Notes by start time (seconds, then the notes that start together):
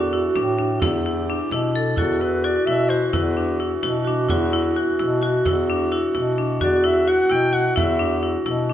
Already playing: E2 E3 D4 F#4
0.13 E4, frame drum
0.36 A2 D4, frame drum
0.59 D4, frame drum
0.80 E2 E4 G4, frame drum
0.84 E3
1.06 E4
1.30 D4
1.49 B2 D4 E4, frame drum
1.75 A4, frame drum
1.96 E2 E3 B3 E4 F#4 A4, frame drum
2.21 E4 B4, frame drum
2.44 F#4 D5
2.66 B2 E4 E5, frame drum
2.89 F#4 C5, frame drum
3.06 C5
3.13 E2 E4 B4, frame drum
3.37 D4, frame drum
3.60 E4
3.83 B2 E4 F#4, frame drum
4.05 D4 F#4, frame drum
4.29 E2 E4 F#4, frame drum
4.53 E4
4.76 F#4
4.99 B2 E4, frame drum
5.22 F#4, frame drum
5.45 E2 E4, frame drum
5.70 D4
5.92 E4 F#4
6.15 B2 E4, frame drum
6.38 D4, frame drum
6.61 E2 F#4 D5, frame drum
6.84 E4 E5, frame drum
7.08 F#4 F#5
7.30 B2 E4 G5, frame drum
7.53 F#4 F#5, frame drum
7.76 E2 E4 E5, frame drum
7.99 D4
8.23 E4
8.46 B2 E4, frame drum
8.70 D4